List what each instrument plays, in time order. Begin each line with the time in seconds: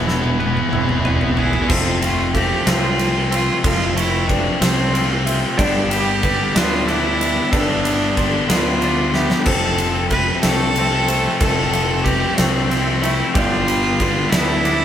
Already playing: fingered electric bass E1, clean electric guitar E3 G#4 B4, pedal steel guitar G#4 E5 E6, felt piano B4
0.05 overdriven electric guitar E3 B3, clean electric guitar E4, snare
0.14 overdriven electric guitar E3 B3
0.21 overdriven electric guitar E3 B3, high tom
0.29 overdriven electric guitar E3 B3
0.38 overdriven electric guitar E3 B3, clean electric guitar B4, high tom
0.45 overdriven electric guitar E3 B3
0.53 overdriven electric guitar E3 B3
0.57 overdriven electric guitar E3, mid tom
0.61 overdriven electric guitar B3
0.68 overdriven electric guitar E3 B3, cello C4, felt piano E5
0.73 fingered electric bass E1, overdriven electric guitar E3 B3, clean electric guitar E4, mid tom
0.83 overdriven electric guitar E3 B3
0.89 overdriven electric guitar E3 B3, mid tom
1.00 overdriven electric guitar E3 B3
1.05 overdriven electric guitar E3 B3, clean electric guitar B4, felt piano D5, mid tom
1.15 overdriven electric guitar E3 B3
1.21 overdriven electric guitar E3 B3, floor tom
1.31 overdriven electric guitar E3 B3
1.37 overdriven electric guitar E3 B3, cello E4, clean electric guitar G#4, floor tom
1.46 overdriven electric guitar E3 B3
1.53 overdriven electric guitar E3 B3, floor tom
1.61 overdriven electric guitar E3 B3
1.69 fingered electric bass F1, overdriven electric guitar F2 C3 F3 A3 C4, pedal steel guitar C4 A4 A5, cello F4, felt piano C5, kick, crash
2.02 clean electric guitar A3, cello F4, ride
2.34 overdriven electric guitar C3 F3 A3 C4, cello G4, felt piano A4, kick, ride
2.66 fingered electric bass C2, overdriven electric guitar F2 C3 F3 A3 C4, cello F4, felt piano C5, snare, ride
2.99 overdriven electric guitar C3 F3 A3 C4, ride
3.31 clean electric guitar C4, cello F4, felt piano C5, ride
3.63 fingered electric bass F1, overdriven electric guitar F2 C3 F3 A3 C4, cello F4, felt piano A4, kick, ride
3.96 clean electric guitar A3, cello E4, ride
4.28 overdriven electric guitar C3 F3 A3 C4, cello D4, felt piano B4, kick, ride
4.60 fingered electric bass C2, overdriven electric guitar F2 C3 F3 A3 C4, cello C4, felt piano C5, snare, ride
4.93 overdriven electric guitar C3 F3 A3 C4, clean electric guitar F4, ride
5.26 clean electric guitar C4, felt piano E5, ride
5.57 fingered electric bass G1, overdriven electric guitar G2 D3 G3 B3 D4, pedal steel guitar B3 G4 D5 G5, cello D4, felt piano D5, kick, ride
5.90 clean electric guitar G3, cello G4, ride
6.22 overdriven electric guitar D3 G3 B3 D4, felt piano B4, kick, ride
6.54 fingered electric bass D2, overdriven electric guitar G2 D3 G3 B3 D4, cello F4, felt piano D5, snare, ride
6.87 overdriven electric guitar D3 G3 B3 D4, cello E4, ride
7.21 felt piano D5, ride
7.51 fingered electric bass G1, overdriven electric guitar G2 D3 G3 B3 D4, cello D4, felt piano B4, pedal steel guitar E5, kick, ride
7.84 clean electric guitar G3, ride
8.16 overdriven electric guitar D3 G3 B3 D4, felt piano C6, kick, ride
8.48 fingered electric bass D2, overdriven electric guitar G2 D3 G3 B3 D4, cello F4, felt piano D5, snare, ride
8.81 overdriven electric guitar D3 G3 B3 D4, ride
9.14 clean electric guitar B3, cello G4, felt piano E5, snare
9.30 snare
9.45 fingered electric bass F1, overdriven electric guitar F2 C3 F3 A3, pedal steel guitar C4 A4 A5, cello A4, felt piano C5, kick, crash
9.49 overdriven electric guitar C4
9.78 clean electric guitar F3, ride
10.10 overdriven electric guitar C3 F3 A3 C4, felt piano A4, cello B4, kick, ride
10.42 fingered electric bass C2, overdriven electric guitar C3 F3 A3 C4, cello A4, felt piano C5, snare, ride
10.46 overdriven electric guitar F2
10.75 overdriven electric guitar C3 F3 A3 C4, ride
11.08 clean electric guitar A3, felt piano C5, ride
11.39 fingered electric bass F1, overdriven electric guitar F2 C3 F3 A3 C4, cello A4, felt piano A4, kick, ride
11.73 clean electric guitar F3, ride
12.04 overdriven electric guitar C3 F3 A3, cello G4, felt piano B4, kick, ride
12.08 overdriven electric guitar C4
12.37 fingered electric bass C2, overdriven electric guitar F2 C3 F3 A3 C4, cello C4, felt piano C5, snare, ride
12.70 overdriven electric guitar C3 F3 A3 C4, ride
13.02 clean electric guitar A3, cello E4, felt piano E5, ride
13.34 fingered electric bass G1, overdriven electric guitar G2 D3 G3 B3 D4, cello F4, pedal steel guitar G4 D5, felt piano D5, kick, ride
13.68 clean electric guitar G3, ride
13.99 overdriven electric guitar D3 G3 B3 D4, felt piano B4, kick, ride
14.30 fingered electric bass D2, overdriven electric guitar G3 B3 D4, cello E4, felt piano D5, snare, ride
14.34 overdriven electric guitar G2 D3
14.64 overdriven electric guitar D3 G3 B3 D4, ride